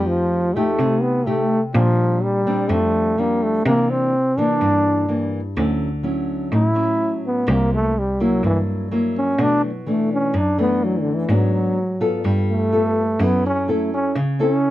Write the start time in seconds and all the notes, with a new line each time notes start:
Already playing: F2 F3 A3 D#4 G4
0.07 F3
0.55 A3 D#4 G4
0.79 C3
1.02 B3
1.26 A3 D#4 G4
1.74 A#2 F3 G3 C4 D4
2.23 G3
2.47 G3 C4 D4
2.69 F2 F3 A3
3.18 G3 A#3 C4 D4
3.43 A3
3.66 C3 E3 A#3 D4
3.90 C4
4.37 E3 A#3 D4
4.61 G2
5.08 E3 A#3 D4
5.57 D2 D3 F#3 C#4 E4
6.03 F#3 C#4 E4
6.52 A2 E4
6.75 F#3 C#4 E4
7.27 B3
7.47 C2 C3 F#3 A#3 E4
7.51 A#3
7.74 A3
7.99 G3
8.20 F#3 A#3 E4
8.43 G2 E3
8.91 F#3 A#3 E4
9.17 C#4
9.39 B2 E3 A3 D4
9.65 F#3
9.86 E3 A3 D4
10.13 C#4
10.34 F#2 D4
10.58 E3 A3 B3 D4
10.84 F#3
11.00 D3
11.16 E3
11.29 G#2 F#3 B3 D4
12.01 B3 F4 A4
12.24 G2 G3
12.51 A3
12.72 B3 F4 A4
13.19 F#2 F#3 C#4 E4 A4
13.24 B3
13.46 C#4
13.68 A3 C#4 E4 A4
13.94 C#4
14.16 C#3
14.39 C#4 E4 A4